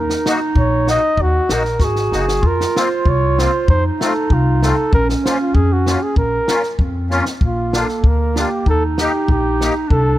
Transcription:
Already playing: upright bass D#2, clarinet D#4, flugelhorn A#4
0.10 snare
0.26 accordion A#3 D#4 F#4, snare
0.55 upright bass A#1, flugelhorn C#5, kick
0.87 accordion A#3 D#4 F#4, flugelhorn D#5, snare
1.17 upright bass D#2, kick
1.22 flugelhorn F#4
1.49 upright bass A#1, accordion A#3 D#4 F#4, snare
1.53 flugelhorn A#4
1.65 snare
1.79 upright bass G#1, clarinet F#4, kick, snare
1.84 flugelhorn G#4
1.96 snare
2.12 upright bass F#1, accordion A#3 D#4 F#4, snare
2.17 flugelhorn G#4
2.28 snare
2.42 upright bass F2, clarinet F4, kick
2.47 flugelhorn A#4
2.61 snare
2.75 accordion A#3 C4 F4, flugelhorn C5, snare
3.05 upright bass C2, flugelhorn C#5, kick
3.38 accordion A#3 C4 F4, flugelhorn C5, snare
3.68 upright bass F2, clarinet D#4, flugelhorn C5, kick
4.00 accordion A3 C4 F4, snare
4.04 flugelhorn A4
4.30 upright bass C2, flugelhorn F4, kick
4.62 accordion A3 C4 F4, flugelhorn A4, snare
4.92 upright bass A#1, clarinet C#4, flugelhorn A#4, kick
5.09 snare
5.25 accordion A#3 C#4 F4, flugelhorn C5, snare
5.40 flugelhorn F4
5.54 upright bass F2, flugelhorn G#4, kick
5.73 flugelhorn F#4
5.86 accordion A#3 C#4 F4, snare
6.03 flugelhorn G#4
6.16 upright bass A#1, flugelhorn A#4, kick
6.48 accordion A#3 C#4 F4, snare
6.63 snare
6.79 upright bass F2, clarinet C4, kick
7.10 accordion A#3 C#4 F4, snare
7.25 snare
7.41 upright bass A#1, clarinet A#3, kick
7.46 flugelhorn F4
7.73 accordion A#3 D4 F4, snare
7.78 flugelhorn A4
7.88 snare
8.03 upright bass D2, flugelhorn A#4, kick
8.35 accordion A#3 D4 F4, flugelhorn G4, snare
8.66 upright bass D#2, clarinet D#4, flugelhorn A4, kick
8.98 accordion A#3 D#4 G4, flugelhorn G4, snare
9.28 upright bass A#1, flugelhorn G4, kick
9.61 accordion A#3 D#4 G4, snare
9.88 upright bass C2, clarinet D4, flugelhorn A4, kick

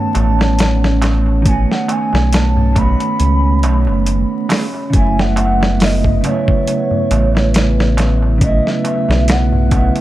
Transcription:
Already playing: clean electric guitar D#3 A3 B3 F#4, analog synth pad C#4 C#5, soft synth lead A5
0.15 analog synth bass A1, closed hi-hat, darbuka tek
0.39 snare, darbuka tek
0.59 snare, closed hi-hat, darbuka tek
0.84 snare
1.02 snare, closed hi-hat, darbuka tek
1.26 darbuka tek
1.42 clean electric guitar D#3 A3, kick, closed hi-hat, darbuka tek
1.47 clean electric guitar B3 F#4, soft synth lead G#5
1.71 soft synth lead F#5, snare
1.88 soft synth lead G#5, closed hi-hat, darbuka tek
2.13 analog synth bass B1, snare, darbuka tek
2.33 soft synth lead A5, snare, closed hi-hat, darbuka tek
2.57 darbuka dum
2.73 clean electric guitar D#3 A3, kick, closed hi-hat, darbuka tek
2.77 clean electric guitar B3, soft synth lead B5
2.81 clean electric guitar F#4
3.00 closed hi-hat, darbuka tek
3.19 analog synth bass C#2, closed hi-hat, darbuka tek
3.63 analog synth bass B1, closed hi-hat, darbuka tek
3.87 analog synth bass F#1, darbuka tek
4.06 closed hi-hat, darbuka tek
4.49 clean electric guitar D#3 A3 B3, snare, open hi-hat, darbuka tek
4.53 clean electric guitar G#4
4.74 darbuka tek
4.90 analog synth bass F#1, clean electric guitar C#3 F#3, analog synth pad B3 B4, kick, closed hi-hat, darbuka tek
4.95 clean electric guitar A3 E4, soft synth lead G#5
5.19 soft synth lead F#5, snare
5.36 closed hi-hat, darbuka tek
5.61 snare, darbuka tek
5.80 soft synth lead D#5, snare, open hi-hat, darbuka tek
6.04 kick, darbuka dum
6.21 clean electric guitar C#3 F#3, closed hi-hat, darbuka tek
6.26 clean electric guitar A3 E4, soft synth lead C#5
6.48 kick, darbuka tek
6.67 closed hi-hat, darbuka tek
6.91 darbuka dum
7.11 analog synth bass A1, closed hi-hat, darbuka tek
7.35 snare, darbuka tek
7.54 snare, closed hi-hat, darbuka tek
7.80 snare
7.97 snare, closed hi-hat, darbuka tek
8.22 darbuka tek
8.38 clean electric guitar C#3 F#3, kick, closed hi-hat, darbuka tek
8.43 clean electric guitar A3, soft synth lead D#5
8.47 clean electric guitar E4
8.67 soft synth lead E5, snare
8.85 closed hi-hat, darbuka tek
9.09 analog synth bass B1, snare, darbuka tek
9.28 soft synth lead F#5, snare, closed hi-hat, darbuka tek
9.53 darbuka dum
9.69 clean electric guitar C#3 F#3, kick, closed hi-hat, darbuka tek
9.74 clean electric guitar A3 E4
9.96 closed hi-hat, darbuka tek

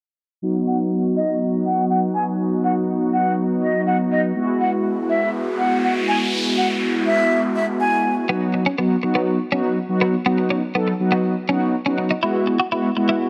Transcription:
0.42 analog polysynth F#3 B3 D#4 F#4
0.67 flute F#5
1.16 flute D#5
1.66 flute F#5
1.90 flute F#5
2.15 flute G#5
2.64 flute F#5
3.13 flute F#5
3.62 flute D#5
3.86 flute F#5
4.11 flute D#5
4.36 analog polysynth G#3 B3 E4 F#4, noise sweep
4.60 flute F#5
5.10 flute E5
5.59 flute F#5
5.84 flute F#5
6.08 flute G#5
6.57 flute F#5
7.06 flute E5
7.56 flute E5
7.80 flute G#5
8.29 analog polysynth F#3 B3 D#4 F#4, clean electric guitar B3
8.54 muted clean electric guitar stroke
8.66 clean electric guitar C#4
8.78 analog polysynth F#3 B3 D#4 F#4, clean electric guitar B3
9.03 analog polysynth F#3 B3 D#4 F#4, muted clean electric guitar stroke
9.15 clean electric guitar B3
9.52 analog polysynth F#3 B3 D#4 F#4, clean electric guitar C#4
9.89 analog polysynth F#3 B3 D#4 F#4
10.01 clean electric guitar B3
10.26 analog polysynth F#3 B3 D#4 F#4, clean electric guitar B3
10.38 muted clean electric guitar stroke
10.51 clean electric guitar C#4
10.75 analog polysynth F#3 B3 D#4 A4, clean electric guitar B3
10.88 muted clean electric guitar stroke
11.00 analog polysynth F#3 B3 D#4 F#4
11.12 clean electric guitar B3
11.49 analog polysynth F#3 B3 D#4 F#4, clean electric guitar C#4
11.86 analog polysynth F#3 B3 D#4 F#4, clean electric guitar C#4
11.98 muted clean electric guitar stroke
12.11 clean electric guitar D#4
12.23 analog polysynth G#3 B3 E4 F#4, clean electric guitar E4
12.47 muted clean electric guitar stroke
12.60 clean electric guitar F#4
12.72 analog polysynth G#3 B3 E4 F#4, clean electric guitar E4
12.97 analog polysynth G#3 B3 E4 F#4, muted clean electric guitar stroke
13.09 clean electric guitar E4

